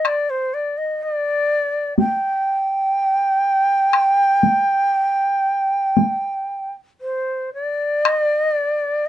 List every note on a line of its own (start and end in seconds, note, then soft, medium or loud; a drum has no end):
0.05 0.31 D5 medium
0.05 taiko rim medium
0.30 0.55 C5 medium
0.54 0.79 D5 medium
0.77 1.04 D#5 medium
1.03 1.98 D5 medium
1.98 6.72 G5 medium
1.98 taiko high soft
3.93 taiko rim soft
4.43 taiko high soft
5.97 taiko high soft
7.01 7.50 C5 medium
7.54 8.38 D5 medium
8.05 taiko rim medium
8.38 8.49 D#5 medium
8.49 9.07 D5 medium